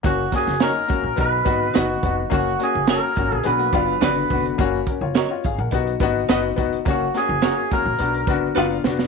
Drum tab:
HH |x-x-x-x-x-x-x-x-|x-x-x-x-x-x-x-ox|x-x-x-x-xxx-x-xx|x-x-x-x-xxx-----|
SD |--ooo-------o---|----o-------o---|----o-------o---|--o-o---------oo|
BD |o-o---o-o-o---o-|o-----o---o---o-|o-o---o-o-o---o-|o-----o---o-----|